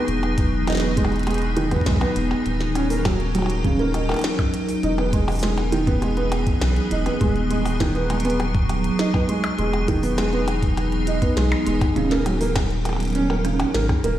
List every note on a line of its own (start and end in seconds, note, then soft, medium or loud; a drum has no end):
0.00 2.42 B3 medium
0.00 9.55 D#4 medium
0.00 2.42 G#4 medium
0.08 1.77 E1 loud
0.08 2.43 E3 medium
0.08 closed hi-hat medium
0.23 closed hi-hat soft
0.23 percussion blips soft
0.38 kick loud
0.38 closed hi-hat medium
0.67 0.75 D#4 loud
0.67 snare medium
0.67 closed hi-hat medium
0.67 percussion blips soft
0.70 snare medium
0.72 snare medium
0.75 snare medium
0.77 snare medium
0.80 0.95 B3 medium
0.80 snare loud
0.80 closed hi-hat soft
0.97 1.10 G#3 medium
0.97 kick loud
0.97 closed hi-hat medium
1.05 percussion blips medium
1.12 closed hi-hat soft
1.16 closed hi-hat soft
1.19 closed hi-hat soft
1.23 closed hi-hat soft
1.27 1.39 G#3 medium
1.27 closed hi-hat medium
1.27 percussion blips medium
1.31 closed hi-hat soft
1.34 closed hi-hat soft
1.38 closed hi-hat soft
1.42 closed hi-hat soft
1.57 1.69 D#3 loud
1.57 closed hi-hat loud
1.71 1.84 B3 loud
1.71 kick medium
1.71 closed hi-hat medium
1.71 percussion blips medium
1.76 kick medium
1.81 kick medium
1.86 2.04 B1 medium
1.86 1.94 G#3 medium
1.86 kick medium
1.86 snare loud
1.86 closed hi-hat medium
1.91 kick medium
1.96 kick loud
2.01 2.09 B3 loud
2.01 closed hi-hat soft
2.01 percussion blips medium
2.16 2.34 E1 loud
2.16 closed hi-hat loud
2.31 percussion blips medium
2.46 4.15 D#1 loud
2.46 4.81 F#3 medium
2.46 4.81 C#4 medium
2.46 4.81 A#4 medium
2.46 closed hi-hat soft
2.61 snare medium
2.61 closed hi-hat soft
2.75 2.83 C#4 loud
2.75 closed hi-hat medium
2.75 percussion blips soft
2.90 3.03 A#3 medium
2.90 open hi-hat medium
3.05 3.18 F#3 medium
3.05 kick loud
3.05 snare loud
3.05 closed hi-hat medium
3.05 percussion blips medium
3.20 closed hi-hat soft
3.35 3.47 F#3 medium
3.35 closed hi-hat medium
3.35 percussion blips soft
3.39 percussion blips soft
3.42 percussion blips soft
3.46 closed hi-hat soft
3.46 percussion blips soft
3.64 3.77 C#3 medium
3.64 kick loud
3.64 closed hi-hat medium
3.79 3.92 A#3 loud
3.79 closed hi-hat soft
3.94 4.07 D#4 medium
3.94 closed hi-hat medium
3.94 percussion blips soft
4.09 4.17 A#3 medium
4.09 closed hi-hat soft
4.09 percussion blips medium
4.12 closed hi-hat soft
4.12 percussion blips medium
4.14 closed hi-hat soft
4.14 percussion blips soft
4.17 closed hi-hat soft
4.17 percussion blips soft
4.19 closed hi-hat soft
4.19 percussion blips soft
4.21 snare loud
4.21 closed hi-hat soft
4.21 percussion blips soft
4.24 closed hi-hat medium
4.39 kick loud
4.39 closed hi-hat soft
4.39 percussion blips medium
4.54 closed hi-hat medium
4.69 open hi-hat medium
4.83 6.52 E1 loud
4.83 7.19 E3 medium
4.83 9.55 B3 medium
4.83 4.91 D#4 loud
4.83 7.19 G#4 medium
4.83 closed hi-hat soft
4.98 5.11 B3 medium
4.98 closed hi-hat soft
4.98 percussion blips soft
5.13 5.25 G#3 medium
5.13 kick loud
5.13 closed hi-hat medium
5.28 open hi-hat soft
5.28 percussion blips medium
5.32 open hi-hat soft
5.35 open hi-hat soft
5.39 5.55 G#3 medium
5.39 snare loud
5.39 closed hi-hat soft
5.39 open hi-hat medium
5.58 closed hi-hat soft
5.58 percussion blips soft
5.72 5.85 D#3 loud
5.72 closed hi-hat medium
5.87 6.00 B3 loud
5.87 kick loud
5.87 closed hi-hat soft
6.02 6.10 G#3 medium
6.02 closed hi-hat soft
6.02 percussion blips soft
6.17 6.25 B3 loud
6.17 closed hi-hat soft
6.32 closed hi-hat medium
6.32 percussion blips medium
6.47 kick loud
6.47 closed hi-hat soft
6.62 6.80 B1 loud
6.62 snare loud
6.62 closed hi-hat medium
6.62 percussion blips soft
6.76 closed hi-hat soft
6.91 7.09 E1 loud
6.91 6.99 D#4 loud
6.91 closed hi-hat medium
7.06 7.19 B3 medium
7.06 closed hi-hat soft
7.06 percussion blips soft
7.21 8.90 D#1 loud
7.21 9.56 F#3 medium
7.21 7.33 G#3 medium
7.21 11.92 G#4 loud
7.21 kick loud
7.21 closed hi-hat soft
7.36 closed hi-hat soft
7.51 7.63 G#3 medium
7.51 closed hi-hat medium
7.66 open hi-hat medium
7.66 percussion blips medium
7.80 7.93 D#3 loud
7.80 kick loud
7.80 snare loud
7.80 closed hi-hat soft
7.95 8.08 B3 loud
7.95 closed hi-hat soft
8.10 8.17 G#3 medium
8.10 closed hi-hat medium
8.10 percussion blips medium
8.20 closed hi-hat medium
8.25 8.32 B3 loud
8.25 closed hi-hat soft
8.30 closed hi-hat medium
8.40 closed hi-hat soft
8.40 percussion blips medium
8.55 kick loud
8.55 closed hi-hat soft
8.69 closed hi-hat medium
8.69 percussion blips medium
8.84 closed hi-hat medium
8.99 9.07 D#4 loud
8.99 snare loud
8.99 closed hi-hat soft
9.14 9.26 B3 medium
9.14 kick loud
9.14 percussion blips soft
9.29 9.41 G#3 medium
9.29 closed hi-hat medium
9.44 closed hi-hat soft
9.44 percussion blips medium
9.59 11.28 E1 loud
9.59 11.94 E3 medium
9.59 9.71 G#3 medium
9.59 11.94 B3 medium
9.59 14.19 D#4 medium
9.59 closed hi-hat medium
9.73 closed hi-hat soft
9.73 percussion blips medium
9.88 10.01 D#3 loud
9.88 kick loud
9.88 closed hi-hat medium
10.03 10.16 B3 loud
10.03 open hi-hat medium
10.18 10.25 G#3 medium
10.18 snare loud
10.18 closed hi-hat medium
10.18 percussion blips medium
10.33 10.40 B3 loud
10.33 closed hi-hat soft
10.48 closed hi-hat medium
10.48 percussion blips medium
10.63 kick loud
10.63 closed hi-hat medium
10.77 closed hi-hat medium
10.77 percussion blips medium
10.92 closed hi-hat soft
11.07 11.15 D#4 loud
11.07 closed hi-hat medium
11.22 11.34 B3 medium
11.22 kick loud
11.22 closed hi-hat medium
11.37 11.55 B1 loud
11.37 11.49 G#3 medium
11.37 snare loud
11.37 closed hi-hat medium
11.52 closed hi-hat soft
11.52 percussion blips medium
11.66 11.85 E1 loud
11.66 11.79 G#3 medium
11.66 closed hi-hat medium
11.81 kick loud
11.81 closed hi-hat medium
11.81 percussion blips medium
11.96 13.65 D#1 loud
11.96 12.09 C#3 loud
11.96 14.19 F#3 medium
11.96 14.19 C#4 medium
11.96 14.19 A#4 medium
11.96 closed hi-hat medium
12.11 12.23 A#3 loud
12.11 snare medium
12.11 closed hi-hat soft
12.26 12.33 F#3 medium
12.26 closed hi-hat medium
12.26 percussion blips medium
12.41 12.48 A#3 loud
12.41 open hi-hat medium
12.56 kick loud
12.56 snare loud
12.56 closed hi-hat medium
12.56 percussion blips medium
12.70 closed hi-hat soft
12.85 closed hi-hat medium
12.85 percussion blips medium
12.89 percussion blips soft
12.93 percussion blips soft
12.96 closed hi-hat medium
12.96 percussion blips soft
13.03 closed hi-hat soft
13.05 closed hi-hat soft
13.08 closed hi-hat soft
13.10 closed hi-hat soft
13.13 13.22 C#4 loud
13.13 closed hi-hat soft
13.15 closed hi-hat medium
13.30 13.42 A#3 medium
13.30 percussion blips medium
13.45 13.57 C#3 medium
13.45 cross-stick medium
13.45 closed hi-hat medium
13.60 closed hi-hat medium
13.60 percussion blips medium
13.74 13.93 G#1 medium
13.74 13.87 A#3 medium
13.74 snare loud
13.74 closed hi-hat medium
13.89 kick loud
13.89 cross-stick medium
13.89 closed hi-hat soft
13.89 percussion blips medium
14.04 14.19 D#1 medium
14.04 14.12 A#3 loud
14.04 closed hi-hat loud